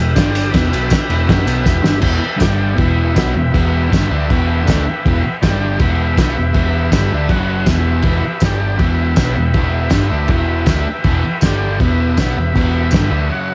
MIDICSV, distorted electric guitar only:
0, 0, Header, 1, 3, 480
1, 0, Start_track
1, 0, Key_signature, 1, "minor"
1, 0, Tempo, 375235
1, 688, Time_signature, 4, 2, 24, 8
1, 17324, End_track
2, 0, Start_track
2, 0, Title_t, "Distorted electric guitar"
2, 0, Program_c, 0, 30
2, 0, Note_on_c, 0, 40, 72
2, 0, Note_on_c, 0, 47, 66
2, 147, Note_off_c, 0, 40, 0
2, 152, Note_off_c, 0, 47, 0
2, 203, Note_on_c, 0, 50, 95
2, 208, Note_on_c, 0, 43, 91
2, 215, Note_on_c, 0, 55, 105
2, 675, Note_off_c, 0, 43, 0
2, 678, Note_off_c, 0, 50, 0
2, 681, Note_on_c, 0, 40, 95
2, 684, Note_off_c, 0, 55, 0
2, 701, Note_on_c, 0, 47, 95
2, 712, Note_on_c, 0, 52, 99
2, 896, Note_off_c, 0, 47, 0
2, 911, Note_on_c, 0, 47, 88
2, 917, Note_off_c, 0, 40, 0
2, 923, Note_off_c, 0, 52, 0
2, 928, Note_on_c, 0, 54, 101
2, 941, Note_on_c, 0, 59, 96
2, 1152, Note_off_c, 0, 47, 0
2, 1160, Note_off_c, 0, 54, 0
2, 1166, Note_off_c, 0, 59, 0
2, 1401, Note_on_c, 0, 40, 92
2, 1406, Note_on_c, 0, 47, 97
2, 1414, Note_on_c, 0, 52, 97
2, 1629, Note_off_c, 0, 40, 0
2, 1634, Note_on_c, 0, 42, 95
2, 1639, Note_off_c, 0, 47, 0
2, 1641, Note_off_c, 0, 52, 0
2, 1646, Note_on_c, 0, 54, 108
2, 1650, Note_on_c, 0, 49, 96
2, 1852, Note_off_c, 0, 54, 0
2, 1859, Note_off_c, 0, 49, 0
2, 1864, Note_on_c, 0, 47, 102
2, 1867, Note_on_c, 0, 54, 103
2, 1872, Note_off_c, 0, 42, 0
2, 1881, Note_on_c, 0, 59, 106
2, 2095, Note_off_c, 0, 47, 0
2, 2109, Note_off_c, 0, 54, 0
2, 2110, Note_on_c, 0, 47, 102
2, 2112, Note_on_c, 0, 40, 91
2, 2116, Note_off_c, 0, 59, 0
2, 2124, Note_on_c, 0, 52, 100
2, 2325, Note_off_c, 0, 40, 0
2, 2330, Note_on_c, 0, 43, 94
2, 2338, Note_off_c, 0, 47, 0
2, 2340, Note_off_c, 0, 52, 0
2, 2343, Note_on_c, 0, 50, 94
2, 2345, Note_on_c, 0, 55, 96
2, 2550, Note_off_c, 0, 43, 0
2, 2555, Note_on_c, 0, 40, 81
2, 2567, Note_off_c, 0, 50, 0
2, 2572, Note_on_c, 0, 47, 99
2, 2574, Note_off_c, 0, 55, 0
2, 2579, Note_on_c, 0, 52, 95
2, 2791, Note_off_c, 0, 40, 0
2, 2821, Note_off_c, 0, 47, 0
2, 2825, Note_off_c, 0, 52, 0
2, 3026, Note_on_c, 0, 43, 94
2, 3043, Note_on_c, 0, 50, 85
2, 3051, Note_on_c, 0, 55, 97
2, 3516, Note_off_c, 0, 43, 0
2, 3521, Note_on_c, 0, 40, 88
2, 3523, Note_off_c, 0, 50, 0
2, 3528, Note_off_c, 0, 55, 0
2, 3528, Note_on_c, 0, 47, 95
2, 3533, Note_on_c, 0, 52, 98
2, 4005, Note_off_c, 0, 47, 0
2, 4016, Note_off_c, 0, 40, 0
2, 4020, Note_on_c, 0, 47, 94
2, 4022, Note_off_c, 0, 52, 0
2, 4037, Note_on_c, 0, 59, 98
2, 4041, Note_on_c, 0, 54, 98
2, 4266, Note_off_c, 0, 47, 0
2, 4274, Note_off_c, 0, 59, 0
2, 4276, Note_off_c, 0, 54, 0
2, 4287, Note_on_c, 0, 40, 60
2, 4303, Note_on_c, 0, 47, 66
2, 4478, Note_off_c, 0, 40, 0
2, 4487, Note_off_c, 0, 47, 0
2, 4510, Note_on_c, 0, 40, 94
2, 4528, Note_on_c, 0, 47, 92
2, 4531, Note_on_c, 0, 52, 97
2, 4992, Note_off_c, 0, 40, 0
2, 4996, Note_off_c, 0, 47, 0
2, 4999, Note_on_c, 0, 43, 91
2, 5002, Note_off_c, 0, 52, 0
2, 5002, Note_on_c, 0, 50, 94
2, 5020, Note_on_c, 0, 55, 88
2, 5231, Note_off_c, 0, 50, 0
2, 5236, Note_off_c, 0, 43, 0
2, 5245, Note_off_c, 0, 55, 0
2, 5246, Note_on_c, 0, 50, 91
2, 5250, Note_on_c, 0, 57, 97
2, 5261, Note_on_c, 0, 62, 114
2, 5479, Note_on_c, 0, 40, 99
2, 5480, Note_off_c, 0, 50, 0
2, 5482, Note_off_c, 0, 57, 0
2, 5487, Note_off_c, 0, 62, 0
2, 5493, Note_on_c, 0, 47, 99
2, 5504, Note_on_c, 0, 52, 103
2, 5935, Note_off_c, 0, 47, 0
2, 5941, Note_on_c, 0, 50, 90
2, 5953, Note_off_c, 0, 52, 0
2, 5957, Note_off_c, 0, 40, 0
2, 5958, Note_on_c, 0, 57, 99
2, 5964, Note_on_c, 0, 62, 100
2, 6188, Note_off_c, 0, 50, 0
2, 6196, Note_off_c, 0, 57, 0
2, 6200, Note_off_c, 0, 62, 0
2, 6465, Note_on_c, 0, 40, 94
2, 6481, Note_on_c, 0, 47, 94
2, 6483, Note_on_c, 0, 52, 94
2, 6683, Note_off_c, 0, 40, 0
2, 6698, Note_off_c, 0, 47, 0
2, 6699, Note_off_c, 0, 52, 0
2, 6937, Note_on_c, 0, 43, 92
2, 6948, Note_on_c, 0, 50, 96
2, 6957, Note_on_c, 0, 55, 98
2, 7407, Note_off_c, 0, 43, 0
2, 7412, Note_off_c, 0, 50, 0
2, 7417, Note_off_c, 0, 55, 0
2, 7423, Note_on_c, 0, 40, 90
2, 7433, Note_on_c, 0, 47, 103
2, 7439, Note_on_c, 0, 52, 110
2, 7881, Note_off_c, 0, 47, 0
2, 7890, Note_off_c, 0, 40, 0
2, 7897, Note_on_c, 0, 47, 89
2, 7898, Note_off_c, 0, 52, 0
2, 7912, Note_on_c, 0, 54, 93
2, 7918, Note_on_c, 0, 59, 103
2, 8127, Note_off_c, 0, 47, 0
2, 8134, Note_off_c, 0, 54, 0
2, 8137, Note_on_c, 0, 40, 64
2, 8138, Note_off_c, 0, 59, 0
2, 8160, Note_on_c, 0, 47, 69
2, 8326, Note_off_c, 0, 40, 0
2, 8338, Note_off_c, 0, 47, 0
2, 8356, Note_on_c, 0, 40, 86
2, 8378, Note_on_c, 0, 52, 99
2, 8384, Note_on_c, 0, 47, 100
2, 8837, Note_off_c, 0, 40, 0
2, 8848, Note_off_c, 0, 52, 0
2, 8851, Note_off_c, 0, 47, 0
2, 8860, Note_on_c, 0, 43, 84
2, 8875, Note_on_c, 0, 50, 92
2, 8881, Note_on_c, 0, 55, 103
2, 9089, Note_off_c, 0, 43, 0
2, 9096, Note_off_c, 0, 50, 0
2, 9100, Note_off_c, 0, 55, 0
2, 9113, Note_on_c, 0, 50, 89
2, 9121, Note_on_c, 0, 57, 88
2, 9133, Note_on_c, 0, 62, 99
2, 9336, Note_off_c, 0, 50, 0
2, 9340, Note_off_c, 0, 57, 0
2, 9346, Note_off_c, 0, 62, 0
2, 9353, Note_on_c, 0, 42, 91
2, 9369, Note_on_c, 0, 49, 85
2, 9374, Note_on_c, 0, 54, 105
2, 9804, Note_off_c, 0, 42, 0
2, 9810, Note_on_c, 0, 40, 94
2, 9817, Note_off_c, 0, 54, 0
2, 9820, Note_off_c, 0, 49, 0
2, 9822, Note_on_c, 0, 52, 95
2, 9825, Note_on_c, 0, 47, 87
2, 10275, Note_off_c, 0, 40, 0
2, 10283, Note_off_c, 0, 47, 0
2, 10290, Note_off_c, 0, 52, 0
2, 10291, Note_on_c, 0, 40, 86
2, 10298, Note_on_c, 0, 47, 100
2, 10308, Note_on_c, 0, 52, 106
2, 10495, Note_off_c, 0, 40, 0
2, 10529, Note_off_c, 0, 47, 0
2, 10534, Note_off_c, 0, 52, 0
2, 10772, Note_on_c, 0, 50, 88
2, 10775, Note_on_c, 0, 43, 88
2, 10789, Note_on_c, 0, 55, 101
2, 11224, Note_off_c, 0, 43, 0
2, 11229, Note_on_c, 0, 40, 90
2, 11233, Note_off_c, 0, 50, 0
2, 11238, Note_off_c, 0, 55, 0
2, 11238, Note_on_c, 0, 47, 100
2, 11243, Note_on_c, 0, 52, 100
2, 11711, Note_off_c, 0, 47, 0
2, 11714, Note_off_c, 0, 40, 0
2, 11721, Note_off_c, 0, 52, 0
2, 11726, Note_on_c, 0, 47, 91
2, 11738, Note_on_c, 0, 54, 85
2, 11749, Note_on_c, 0, 59, 100
2, 11958, Note_off_c, 0, 47, 0
2, 11969, Note_off_c, 0, 54, 0
2, 11969, Note_on_c, 0, 40, 65
2, 11973, Note_on_c, 0, 47, 73
2, 11974, Note_off_c, 0, 59, 0
2, 12164, Note_off_c, 0, 40, 0
2, 12166, Note_off_c, 0, 47, 0
2, 12204, Note_on_c, 0, 40, 94
2, 12217, Note_on_c, 0, 47, 96
2, 12224, Note_on_c, 0, 52, 94
2, 12682, Note_off_c, 0, 40, 0
2, 12689, Note_off_c, 0, 47, 0
2, 12692, Note_off_c, 0, 52, 0
2, 12704, Note_on_c, 0, 43, 83
2, 12705, Note_on_c, 0, 50, 98
2, 12714, Note_on_c, 0, 55, 99
2, 12900, Note_off_c, 0, 50, 0
2, 12916, Note_on_c, 0, 50, 97
2, 12922, Note_off_c, 0, 55, 0
2, 12927, Note_on_c, 0, 57, 101
2, 12932, Note_off_c, 0, 43, 0
2, 12944, Note_on_c, 0, 62, 99
2, 13158, Note_off_c, 0, 50, 0
2, 13164, Note_off_c, 0, 57, 0
2, 13172, Note_off_c, 0, 62, 0
2, 13181, Note_on_c, 0, 40, 90
2, 13189, Note_on_c, 0, 47, 99
2, 13196, Note_on_c, 0, 52, 100
2, 13651, Note_off_c, 0, 40, 0
2, 13654, Note_off_c, 0, 47, 0
2, 13658, Note_off_c, 0, 52, 0
2, 13660, Note_on_c, 0, 50, 91
2, 13673, Note_on_c, 0, 57, 98
2, 13679, Note_on_c, 0, 62, 91
2, 13890, Note_off_c, 0, 50, 0
2, 13897, Note_off_c, 0, 57, 0
2, 13900, Note_off_c, 0, 62, 0
2, 14134, Note_on_c, 0, 40, 90
2, 14146, Note_on_c, 0, 47, 100
2, 14168, Note_on_c, 0, 52, 105
2, 14362, Note_off_c, 0, 40, 0
2, 14373, Note_off_c, 0, 47, 0
2, 14384, Note_off_c, 0, 52, 0
2, 14618, Note_on_c, 0, 50, 96
2, 14621, Note_on_c, 0, 43, 83
2, 14637, Note_on_c, 0, 55, 91
2, 15089, Note_off_c, 0, 50, 0
2, 15091, Note_off_c, 0, 43, 0
2, 15098, Note_off_c, 0, 55, 0
2, 15101, Note_on_c, 0, 40, 90
2, 15110, Note_on_c, 0, 47, 97
2, 15119, Note_on_c, 0, 52, 103
2, 15570, Note_off_c, 0, 40, 0
2, 15575, Note_off_c, 0, 47, 0
2, 15579, Note_off_c, 0, 52, 0
2, 15602, Note_on_c, 0, 47, 96
2, 15611, Note_on_c, 0, 54, 91
2, 15625, Note_on_c, 0, 59, 96
2, 15818, Note_off_c, 0, 47, 0
2, 15820, Note_on_c, 0, 40, 60
2, 15825, Note_off_c, 0, 54, 0
2, 15832, Note_off_c, 0, 59, 0
2, 15833, Note_on_c, 0, 47, 73
2, 16009, Note_off_c, 0, 40, 0
2, 16015, Note_off_c, 0, 47, 0
2, 16049, Note_on_c, 0, 40, 90
2, 16059, Note_on_c, 0, 47, 102
2, 16073, Note_on_c, 0, 52, 112
2, 16523, Note_off_c, 0, 40, 0
2, 16528, Note_off_c, 0, 47, 0
2, 16535, Note_off_c, 0, 52, 0
2, 16536, Note_on_c, 0, 43, 83
2, 16542, Note_on_c, 0, 50, 100
2, 16556, Note_on_c, 0, 55, 102
2, 16757, Note_off_c, 0, 50, 0
2, 16767, Note_off_c, 0, 43, 0
2, 16768, Note_off_c, 0, 55, 0
2, 16772, Note_on_c, 0, 50, 89
2, 16773, Note_on_c, 0, 57, 91
2, 16781, Note_on_c, 0, 62, 97
2, 17003, Note_on_c, 0, 42, 91
2, 17004, Note_off_c, 0, 50, 0
2, 17005, Note_off_c, 0, 57, 0
2, 17009, Note_off_c, 0, 62, 0
2, 17016, Note_on_c, 0, 49, 100
2, 17031, Note_on_c, 0, 54, 98
2, 17324, Note_off_c, 0, 42, 0
2, 17324, Note_off_c, 0, 49, 0
2, 17324, Note_off_c, 0, 54, 0
2, 17324, End_track
3, 0, Start_track
3, 0, Title_t, "Muted distorted electric guitar strokes"
3, 1178, Note_on_c, 9, 29, 61
3, 1306, Note_off_c, 9, 29, 0
3, 2807, Note_on_c, 9, 29, 57
3, 2935, Note_off_c, 9, 29, 0
3, 6235, Note_on_c, 9, 29, 57
3, 6363, Note_off_c, 9, 29, 0
3, 6698, Note_on_c, 9, 29, 55
3, 6826, Note_off_c, 9, 29, 0
3, 10510, Note_on_c, 9, 29, 54
3, 10638, Note_off_c, 9, 29, 0
3, 13912, Note_on_c, 9, 29, 57
3, 14040, Note_off_c, 9, 29, 0
3, 14377, Note_on_c, 9, 29, 57
3, 14505, Note_off_c, 9, 29, 0
3, 17324, End_track
0, 0, End_of_file